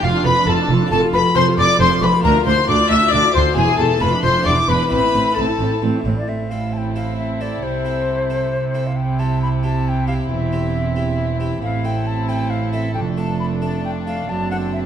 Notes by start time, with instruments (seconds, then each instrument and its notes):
Already playing: harpsichord A3 D4 F4
0.03 double bass section F1, cello section F2, harpsichord F2, viola section F4, violin section F4 F5, flute F5
0.15 viola section D4
0.25 double bass section F1, harpsichord F2, cello section F2, viola section F4, violin section B4 B5, flute B5
0.36 viola section D4
0.47 double bass section F1, harpsichord F2, cello section F2, viola section F4, violin section A4 A5, flute A5
0.59 viola section D4
0.69 double bass section F1, harpsichord F2, cello section F2, viola section F4
0.80 viola section D4
0.87 harpsichord C4 F4
0.91 double bass section F1, harpsichord F2, cello section F2, viola section A4, violin section A4 A5, flute A5
1.01 viola section F4
1.13 double bass section F1, cello section F2, harpsichord F2, viola section A4, violin section B4 B5, flute B5
1.24 viola section F4
1.35 double bass section F1, harpsichord F2, cello section F2, viola section A4, violin section C5 C6, flute C6
1.46 viola section F4
1.57 double bass section F1, harpsichord F2, cello section F2, viola section A4, violin section D5 D6, flute D6
1.69 viola section F4
1.79 double bass section F1, harpsichord F2, cello section F2, viola section A4, violin section C5 C6, flute C6
1.91 viola section F4
2.02 double bass section F1, cello section F2, harpsichord F2, viola section A4, violin section B4 B5, flute D6
2.06 flute B5
2.12 viola section F4
2.19 harpsichord A#3 D4 F4
2.23 harpsichord D2, cello section D2, double bass section D2, viola section D4, violin section A#4 A#5, flute A#5
2.34 viola section F4
2.46 cello section D2, harpsichord D2, double bass section D2, viola section D4, violin section C5 C6, flute C6
2.57 viola section F4
2.67 harpsichord D2, cello section D2, double bass section D2, viola section D4, violin section D5 D6, flute D6
2.79 viola section F4
2.90 harpsichord D2, double bass section D2, cello section D2, viola section D4, violin section E5 E6, flute E6
3.02 viola section F4
3.11 cello section D2, harpsichord D2, double bass section D2, viola section D4, violin section D5 D6, flute D6
3.23 viola section F4
3.34 harpsichord D2, cello section D2, double bass section D2, viola section D4, violin section C5 C6, flute C6
3.45 viola section F4
3.52 harpsichord B3 E4, viola section G#4
3.56 double bass section E1, harpsichord E2, cello section E2, violin section G#4 G#5, flute G#5
3.68 viola section E4
3.79 double bass section E1, cello section E2, harpsichord E2, viola section G#4, violin section A4 A5, flute A5
3.90 viola section E4
3.97 harpsichord A3 D4 A4, viola section F4
4.01 double bass section F1, harpsichord F2, cello section F2, violin section B4 B5, flute B5
4.12 viola section D4
4.23 double bass section F1, harpsichord F2, cello section F2, viola section F4, violin section C5 C6, flute C6
4.35 viola section D4
4.42 harpsichord B3 E4 G#4
4.46 double bass section E1, harpsichord E2, cello section E2, viola section D4, violin section D5 D6, flute D6
4.57 viola section E4
4.68 double bass section E1, harpsichord E2, cello section E2, viola section D4, violin section B4 B5, flute B5
4.80 viola section E4
4.87 harpsichord C4 E4 A4, violin section B4
4.91 double bass section A1, harpsichord A2, cello section A2, viola section C4, flute B5, violin section B5
5.03 viola section E4
5.13 double bass section A1, harpsichord A2, cello section A2, viola section C4
5.26 viola section E4
5.36 double bass section A1, harpsichord A2, cello section A2, viola section C4, violin section A4 A5, flute B5
5.41 flute A5
5.48 viola section E4
5.59 double bass section A1, harpsichord A2, cello section A2, viola section C4
5.72 viola section E4
5.82 double bass section A1, harpsichord A2, cello section A2, viola section C4
5.94 viola section E4
6.05 double bass section A1, harpsichord A2, cello section A2, viola section C4
6.17 viola section E4, flute D5
6.28 double bass section A1, harpsichord A2, cello section A2, viola section C4, violin section E4 A4, flute E5
6.50 harpsichord C4 E4 A4, flute F5
6.73 flute A5
6.78 flute G5
6.96 harpsichord C4 E4 A4, flute F5
7.17 flute E5
7.41 harpsichord C4 E4 A4, flute D5
7.62 double bass section C2, harpsichord C3, cello section C3, flute C5
7.85 harpsichord C4 E4 A4
8.30 harpsichord C4 E4 A4
8.74 harpsichord C4 E4 A4
8.87 flute F5
8.96 viola section C4, violin section E4 G4, flute G5
9.19 harpsichord C4 E4 G4, flute A5
9.42 flute B5
9.63 harpsichord C4 E4 G4, flute A5
9.85 flute G5 A5
10.07 harpsichord C4 E4 G4, flute F5
10.30 double bass section E1, harpsichord E2, cello section E2, flute E5
10.52 harpsichord C4 E4 G4
10.96 harpsichord C4 E4 G4
11.40 harpsichord C4 E4 G4
11.62 double bass section A1, cello section A2, harpsichord A2, viola section C4, violin section E4 A4, flute F5
11.84 harpsichord C4 E4 A4, flute G5
12.07 flute A5
12.29 harpsichord C4 E4 A4, flute G5
12.50 flute F5
12.73 harpsichord C4 E4 A4, flute E5
12.94 double bass section F1, harpsichord F2, cello section F2, viola section A3, violin section D4, flute G5
13.17 harpsichord A3 D4 A4, flute A5
13.40 flute B5
13.62 harpsichord A3 D4 A4, flute A5
13.85 flute G5
14.07 harpsichord A3 D4 A4, flute F5
14.29 double bass section F#1, cello section F#2, harpsichord F#2, viola section C4, violin section A4, flute A5
14.51 harpsichord C4 D4 A4, flute F#5
14.73 flute E5